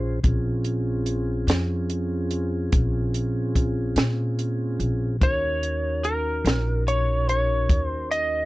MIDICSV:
0, 0, Header, 1, 5, 480
1, 0, Start_track
1, 0, Key_signature, -5, "minor"
1, 0, Tempo, 827586
1, 137, Time_signature, 12, 3, 24, 8
1, 4902, End_track
2, 0, Start_track
2, 0, Title_t, "Lead electric guitar"
2, 0, Program_c, 0, 29
2, 3035, Note_on_c, 0, 73, 84
2, 3508, Note_on_c, 0, 70, 69
2, 3521, Note_off_c, 0, 73, 0
2, 3960, Note_off_c, 0, 70, 0
2, 3991, Note_on_c, 0, 73, 78
2, 4224, Note_off_c, 0, 73, 0
2, 4230, Note_on_c, 0, 73, 79
2, 4567, Note_off_c, 0, 73, 0
2, 4567, Note_on_c, 0, 72, 79
2, 4704, Note_off_c, 0, 72, 0
2, 4706, Note_on_c, 0, 75, 81
2, 4902, Note_off_c, 0, 75, 0
2, 4902, End_track
3, 0, Start_track
3, 0, Title_t, "Tonewheel organ"
3, 0, Program_c, 1, 16
3, 0, Note_on_c, 1, 61, 58
3, 0, Note_on_c, 1, 65, 59
3, 0, Note_on_c, 1, 68, 63
3, 0, Note_on_c, 1, 72, 66
3, 111, Note_off_c, 1, 65, 0
3, 113, Note_off_c, 1, 61, 0
3, 114, Note_off_c, 1, 68, 0
3, 115, Note_off_c, 1, 72, 0
3, 137, Note_on_c, 1, 61, 60
3, 139, Note_on_c, 1, 60, 61
3, 139, Note_on_c, 1, 65, 60
3, 140, Note_on_c, 1, 68, 64
3, 2996, Note_off_c, 1, 61, 0
3, 2997, Note_off_c, 1, 60, 0
3, 2997, Note_off_c, 1, 65, 0
3, 2998, Note_off_c, 1, 68, 0
3, 3019, Note_on_c, 1, 70, 57
3, 3022, Note_on_c, 1, 61, 60
3, 3024, Note_on_c, 1, 63, 62
3, 3029, Note_on_c, 1, 66, 60
3, 4902, Note_off_c, 1, 61, 0
3, 4902, Note_off_c, 1, 63, 0
3, 4902, Note_off_c, 1, 66, 0
3, 4902, Note_off_c, 1, 70, 0
3, 4902, End_track
4, 0, Start_track
4, 0, Title_t, "Upright bass"
4, 0, Program_c, 2, 32
4, 0, Note_on_c, 2, 34, 70
4, 117, Note_off_c, 2, 34, 0
4, 136, Note_on_c, 2, 34, 82
4, 834, Note_off_c, 2, 34, 0
4, 853, Note_on_c, 2, 41, 84
4, 1553, Note_off_c, 2, 41, 0
4, 1584, Note_on_c, 2, 34, 80
4, 2278, Note_off_c, 2, 34, 0
4, 2296, Note_on_c, 2, 46, 84
4, 2755, Note_off_c, 2, 46, 0
4, 2781, Note_on_c, 2, 34, 70
4, 3001, Note_off_c, 2, 34, 0
4, 3024, Note_on_c, 2, 39, 77
4, 3718, Note_off_c, 2, 39, 0
4, 3739, Note_on_c, 2, 34, 84
4, 4435, Note_off_c, 2, 34, 0
4, 4460, Note_on_c, 2, 39, 75
4, 4902, Note_off_c, 2, 39, 0
4, 4902, End_track
5, 0, Start_track
5, 0, Title_t, "Drums"
5, 139, Note_on_c, 9, 42, 71
5, 140, Note_on_c, 9, 36, 86
5, 197, Note_off_c, 9, 42, 0
5, 198, Note_off_c, 9, 36, 0
5, 374, Note_on_c, 9, 42, 54
5, 432, Note_off_c, 9, 42, 0
5, 615, Note_on_c, 9, 42, 56
5, 673, Note_off_c, 9, 42, 0
5, 859, Note_on_c, 9, 42, 77
5, 869, Note_on_c, 9, 38, 94
5, 917, Note_off_c, 9, 42, 0
5, 927, Note_off_c, 9, 38, 0
5, 1100, Note_on_c, 9, 42, 58
5, 1158, Note_off_c, 9, 42, 0
5, 1338, Note_on_c, 9, 42, 55
5, 1396, Note_off_c, 9, 42, 0
5, 1580, Note_on_c, 9, 42, 76
5, 1582, Note_on_c, 9, 36, 91
5, 1638, Note_off_c, 9, 42, 0
5, 1640, Note_off_c, 9, 36, 0
5, 1823, Note_on_c, 9, 42, 58
5, 1881, Note_off_c, 9, 42, 0
5, 2062, Note_on_c, 9, 36, 61
5, 2063, Note_on_c, 9, 42, 56
5, 2120, Note_off_c, 9, 36, 0
5, 2121, Note_off_c, 9, 42, 0
5, 2297, Note_on_c, 9, 42, 77
5, 2307, Note_on_c, 9, 38, 105
5, 2355, Note_off_c, 9, 42, 0
5, 2365, Note_off_c, 9, 38, 0
5, 2545, Note_on_c, 9, 42, 53
5, 2603, Note_off_c, 9, 42, 0
5, 2784, Note_on_c, 9, 42, 48
5, 2842, Note_off_c, 9, 42, 0
5, 3025, Note_on_c, 9, 36, 90
5, 3025, Note_on_c, 9, 42, 69
5, 3083, Note_off_c, 9, 36, 0
5, 3083, Note_off_c, 9, 42, 0
5, 3265, Note_on_c, 9, 42, 47
5, 3323, Note_off_c, 9, 42, 0
5, 3504, Note_on_c, 9, 42, 47
5, 3562, Note_off_c, 9, 42, 0
5, 3745, Note_on_c, 9, 42, 70
5, 3755, Note_on_c, 9, 38, 94
5, 3803, Note_off_c, 9, 42, 0
5, 3813, Note_off_c, 9, 38, 0
5, 3990, Note_on_c, 9, 42, 54
5, 4048, Note_off_c, 9, 42, 0
5, 4228, Note_on_c, 9, 42, 51
5, 4286, Note_off_c, 9, 42, 0
5, 4463, Note_on_c, 9, 36, 75
5, 4464, Note_on_c, 9, 42, 67
5, 4521, Note_off_c, 9, 36, 0
5, 4522, Note_off_c, 9, 42, 0
5, 4707, Note_on_c, 9, 42, 48
5, 4765, Note_off_c, 9, 42, 0
5, 4902, End_track
0, 0, End_of_file